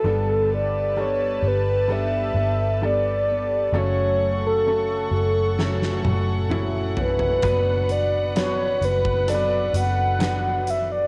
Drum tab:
HH |----------------|----------------|x-x-x-x-x-x-x-x-|
SD |----------------|--------oo------|----o-------o---|
T1 |----------------|----------o-----|----------------|
T2 |----------------|------------o---|----------------|
FT |----------------|--------------oo|----------------|
BD |----------------|----------------|o------o--------|